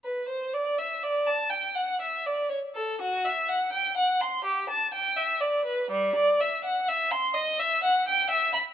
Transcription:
\new Staff \with { instrumentName = "Violin" } { \time 6/8 \key g \major \tempo 4. = 83 b'8 c''8 d''8 e''8 d''8 a''8 | g''8 fis''8 e''8 d''8 cis''8 a'8 | fis'8 e''8 fis''8 g''8 fis''8 c'''8 | g'8 a''8 g''8 e''8 d''8 b'8 |
\key e \minor g8 d''8 e''8 fis''8 e''8 c'''8 | dis''8 e''8 fis''8 g''8 e''8 b''8 | }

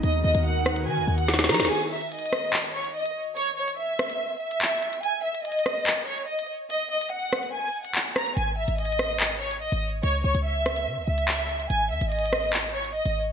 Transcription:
<<
  \new Staff \with { instrumentName = "Violin section" } { \time 4/4 \key dis \phrygian \tempo 4 = 144 dis''8 dis''8 fis''4 gis''8. fis''8. ais''8 | gis''8 e''8 dis''4. cis''8 dis''8 r8 | cis''8 cis''8 e''4. e''4. | gis''8 e''8 dis''4. cis''8 dis''8 r8 |
dis''8 dis''8 fis''4 gis''8. fis''8. ais''8 | gis''8 e''8 dis''4. cis''8 dis''8 r8 | cis''8 cis''8 e''4. e''4. | gis''8 e''8 dis''4. cis''8 dis''8 r8 | }
  \new Staff \with { instrumentName = "Analog synth pad" } { \time 4/4 \key dis \phrygian <dis dis' fis' ais'>1 | r1 | r1 | r1 |
r1 | r1 | r1 | r1 | }
  \new Staff \with { instrumentName = "808-style bass" } { \clef bass \time 4/4 \key dis \phrygian dis,8 dis,16 dis,4~ dis,16 dis16 dis,16 dis,4 fis16 dis,16 | r1 | r1 | r1 |
r1 | gis,,8. gis,,2~ gis,,8 gis,,8. | cis,8 cis,16 cis,4~ cis,16 cis16 cis,16 cis,4. | gis,,8 dis,16 gis,,2~ gis,,8 gis,,8. | }
  \new DrumStaff \with { instrumentName = "Drums" } \drummode { \time 4/4 hh8. hh16 r8 <hh ss>16 hh16 r8. hh16 sn32 sn32 sn32 sn32 <hh sn>32 sn32 <hh sn>32 sn32 | <cymc hh>8. hh16 \tuplet 3/2 { hh16 hh16 hh16 <hh ss>16 r16 r16 } hc8. hh16 r16 hh8. | hh8. hh16 r8 <hh ss>16 hh16 r8. hh16 hc8 hh16 hh16 | hh8. hh16 \tuplet 3/2 { hh16 hh16 hh16 <hh ss>16 r16 r16 } hc8. hh16 r16 hh8. |
hh8. hh16 r8 <hh ss>16 hh16 r8. hh16 hc8 <hh ss>16 hh16 | hh8. hh16 \tuplet 3/2 { hh16 hh16 hh16 <hh ss>16 r16 r16 } hc8. hh16 r16 hh8. | hh8. hh16 r8 <hh ss>16 hh16 r8. hh16 hc8 hh16 hh16 | hh8. hh16 \tuplet 3/2 { hh16 hh16 hh16 <hh ss>16 r16 r16 } hc8. hh16 r16 hh8. | }
>>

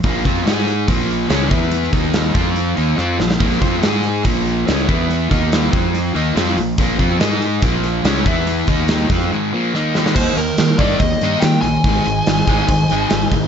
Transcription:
<<
  \new Staff \with { instrumentName = "Lead electric guitar" } { \time 4/4 \key ees \major \tempo 4 = 142 r1 | r1 | r1 | r1 |
r1 | r1 | c''8 bes'4 d''8 ees''4 g''8 aes''8~ | aes''2.~ aes''8 r8 | }
  \new Staff \with { instrumentName = "Tonewheel organ" } { \time 4/4 \key ees \major r1 | r1 | r1 | r1 |
r1 | r1 | <ees' g' bes' ees''>1 | <ees' aes' c'' ees''>1 | }
  \new Staff \with { instrumentName = "Overdriven electric guitar" } { \clef bass \time 4/4 \key ees \major <bes, f bes>8 <f c' f'>8 <aes ees' aes'>4 <bes, f bes>4 <des aes des'>8 <e b e'>8~ | <e b e'>8 <ees bes ees'>4 <f c' f'>4 <ees bes ees'>8 <f c' f'>8 <bes, f>8 | <bes, f bes>8 <f c' f'>8 <aes ees' aes'>4 <bes, f bes>4 <des aes des'>8 <e b e'>8~ | <e b e'>8 <ees bes ees'>4 <f c' f'>4 <ees bes ees'>8 <f c' f'>8 <bes, f>8 |
<bes, f bes>8 <f c' f'>8 <aes ees' aes'>4 <bes, f bes>4 <des aes des'>8 <e b e'>8~ | <e b e'>8 <ees bes ees'>4 <f c' f'>8 <aes, ees aes>8 <bes, f bes>8 <ees bes ees'>4 | <ees bes ees'>8 <ees bes>8 <ees bes>8 <ees bes ees'>8 <ees bes>8 <ees bes ees'>8 <ees bes>8 <ees bes>8 | <aes, ees aes>8 <aes, ees>8 <aes, ees>8 <aes, ees aes>8 <aes, ees>8 <aes, ees aes>8 <aes, ees>8 <aes, ees>8 | }
  \new Staff \with { instrumentName = "Fingered electric bass" } { \clef bass \time 4/4 \key ees \major bes,,8 f,8 aes,4 bes,,4 des,8 e,8~ | e,8 ees,4 f,4 ees,8 f,8 bes,,8 | bes,,8 f,8 aes,4 bes,,4 des,8 e,8~ | e,8 ees,4 f,4 ees,8 f,8 bes,,8 |
bes,,8 f,8 aes,4 bes,,4 des,8 e,8~ | e,8 ees,4 f,8 r2 | ees,8 ees,8 ees8 g,8 ees,8 g,8 ees8 bes,,8 | aes,,8 aes,,8 aes,,8 aes,,8 aes,,8 aes,,8 aes,,8 aes,,8 | }
  \new DrumStaff \with { instrumentName = "Drums" } \drummode { \time 4/4 <hho bd>8 <hho bd>8 <hho sn>8 hho8 <hho bd>8 hho8 <hho sn>8 <hho bd>8 | hho16 sn16 <hho bd>8 <hho sn>8 <hho bd>8 hho8 hho8 sn8 sn16 sn16 | <hho bd>16 sn16 <hho bd>8 <hho sn>8 hho8 <hho bd>8 hho8 <hho sn>8 <hho bd>8 | hho8 <hho bd>8 <hho sn>8 <hho bd>8 hho8 hho8 <hho sn>8 hho8 |
<hho bd>8 <hho bd>8 <hho sn>8 hho8 <hho bd>8 hho8 <hho sn>8 <hho bd>8 | hho8 <hho bd>8 <hho sn>8 <hho bd>8 r4 sn8 sn16 sn16 | <cymc bd>8 hho8 <hho sn>8 <hho bd>8 <hho bd>8 hho8 <hho sn>8 hho8 | <hho bd>8 hho8 <hho sn>8 <hho bd>8 <hho bd>8 hho8 <hho sn>8 <hho bd>8 | }
>>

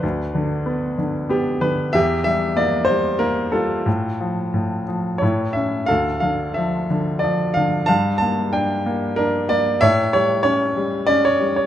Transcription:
<<
  \new Staff \with { instrumentName = "Grand piano" } { \time 3/4 \key g \dorian \tempo 4 = 94 << { b'4. r8 g'8 b'8 | e''8 e''8 d''8 c''8 bes'8 a'8~ | a'4. r8 cis''8 e''8 | f''8 f''8 e''8 r8 d''8 f''8 |
a''8 a''8 g''8 r8 bes'8 d''8 | e''8 cis''8 cis''4 d''16 cis''8 cis''16 | } \\ { d'4. r4. | g'4. r4 f'8~ | f'4. r8 e'4 | a'4. r4. |
f''4. r4. | cis''4. r4. | } >> }
  \new Staff \with { instrumentName = "Grand piano" } { \clef bass \time 3/4 \key g \dorian d,8 d8 b8 d8 b8 d8 | e,8 g8 bes8 g8 bes8 g8 | a,8 f8 a,8 f8 a,8 cis'8 | d,8 d8 f8 d8 f8 d8 |
g,8 bes8 d'8 bes8 d'8 bes8 | a,8 g8 cis'8 g8 cis'8 g8 | }
>>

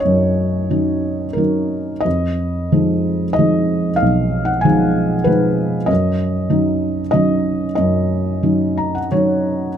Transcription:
<<
  \new Staff \with { instrumentName = "Felt piano" } { \time 3/4 \key ees \minor \tempo 4 = 93 << { r2. | r2. | r2. | r2. |
r4. bes''16 ges''16 r4 | } \\ { des''2 bes'4 | ees''2 ees''4 | f''8. ges''16 aes''4 ces''4 | ees''2 ees''4 |
ees''2 des''4 | } >> }
  \new Staff \with { instrumentName = "Felt piano" } { \clef bass \time 3/4 \key ees \minor ges,4 <ges des' ees'>4 <ges des' ees'>4 | f,4 <f aes ees'>4 <f aes ees'>4 | ces,4 <f aes ees'>4 <f aes ees'>4 | ges,4 <ges des' ees'>4 <ges des' ees'>4 |
ges,4 <ges des' ees'>4 <ges des' ees'>4 | }
>>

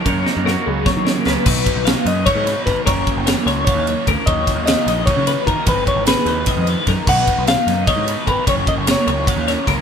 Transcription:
<<
  \new Staff \with { instrumentName = "Clean electric guitar" } { \time 7/8 \key fis \major \tempo 4 = 150 r2. r8 | r4. dis''8 cis''4 b'8 | ais'2 cis''4 r8 | dis''4 dis''4 cis''4 ais'8 |
b'8 cis''8 b'2 r8 | fis''4 eis''4 dis''4 b'8 | cis''8 dis''8 cis''2 r8 | }
  \new Staff \with { instrumentName = "Clean electric guitar" } { \time 7/8 \key fis \major cis''4 ais'8 gis'8 cis''8 ais'8 b'8 | b'4 eis''8 dis''8 cis''8 b'8 ais'8 | cis''4 ais'8 cis''8 eis''8 cis''8 ais'8 | cis''4 eis''8 dis''8 cis''8 b'8 ais'8 |
b'4 gis'8 b'8 dis''8 b'8 ais'8 | b'4 eis''8 dis''8 cis''8 b'8 ais'8 | cis''4 ais'8 cis''8 eis''8 cis''8 ais'8 | }
  \new Staff \with { instrumentName = "Clean electric guitar" } { \time 7/8 \key fis \major << { ais'8 dis'8 fis'2 ais'8 | r2. r8 | r2. r8 | r2. r8 |
r2. r8 | r2. r8 | r2. r8 | } \\ { <fis, fis>4. fis4 cis4 | r2. r8 | r2. r8 | r2. r8 |
r2. r8 | r2. r8 | r2. r8 | } >> }
  \new Staff \with { instrumentName = "Overdriven electric guitar" } { \time 7/8 \key fis \major <fis, cis fis ais cis'>8 <fis ais cis'>8 <cis fis ais cis'>4 <fis, cis fis ais cis'>8 <fis ais cis'>8 <cis fis ais cis'>8 | <b, fis b dis'>8 <fis b dis'>8 <b, fis b dis'>4 <b, fis b dis'>8 <fis b dis'>8 <b, fis b dis'>8 | <fis, cis fis ais cis'>8 <fis ais cis'>8 <cis fis ais cis'>4 <fis, cis fis ais cis'>8 <fis ais cis'>8 <cis fis ais cis'>8 | <dis fis ais dis'>8 <fis ais dis'>8 <dis fis ais dis'>4 <dis fis ais dis'>8 <fis ais dis'>8 <dis fis ais dis'>8 |
<gis, dis gis b dis'>8 <gis b dis'>8 <dis gis b dis'>4 <gis, dis gis b dis'>8 <gis b dis'>8 <dis gis b dis'>8 | <b, fis b dis'>8 <fis b dis'>8 <b, fis b dis'>4 <b, fis b dis'>8 <fis b dis'>8 <b, fis b dis'>8 | <fis, cis fis ais cis'>8 <fis ais cis'>8 <cis fis ais cis'>4 <fis, cis fis ais cis'>8 <fis ais cis'>8 <cis fis ais cis'>8 | }
  \new Staff \with { instrumentName = "Picked electric bass" } { \clef bass \time 7/8 \key fis \major fis,8 r16 fis,8 r16 cis,8 r16 dis8 r16 cis,16 r16 | b,,8 r16 b,,8 r16 fis,8 r16 gis,8 r16 gis,,16 r16 | fis,,8 r16 fis,,8 r16 cis,8 r16 dis,8 r16 d,16 r16 | dis,8 r16 dis,8 r16 ais,,8 r16 cis8 r16 dis16 r16 |
gis,,8 r16 gis,,8 r16 dis,8 r16 eis,8 r16 fis,16 r16 | b,,8 r16 b,,8 r16 fis,8 r16 gis,8 r16 gis,,16 r16 | fis,,8 r16 fis,,8 r16 cis,8 r16 dis,8 r16 cis,16 r16 | }
  \new DrumStaff \with { instrumentName = "Drums" } \drummode { \time 7/8 <bd cymr>8 sn8 sn4 <bd sn>8 sn8 sn8 | <cymc bd>8 <bd cymr>8 <cymr sn>8 <cymr sn>8 <bd cymr>8 <cymr sn>8 <bd cymr sn>8 | <bd cymr>8 <bd cymr>8 <cymr sn>8 <cymr sn>8 <bd cymr>8 cymr8 <bd cymr>8 | <bd cymr>8 <bd cymr sn>8 <cymr sn>8 <cymr sn>8 <bd cymr>8 <cymr sn>8 <bd cymr>8 |
<bd cymr>8 <bd cymr>8 <cymr sn>8 <cymr sn>8 <bd cymr sn>8 cymr8 <bd cymr sn>8 | <cymc bd>8 <bd cymr>8 <cymr sn>8 <cymr sn>8 <bd cymr>8 cymr8 <bd cymr>8 | <bd cymr>8 <bd cymr>8 <cymr sn>8 cymr8 <bd cymr>8 <cymr sn>8 <bd cymr sn>8 | }
>>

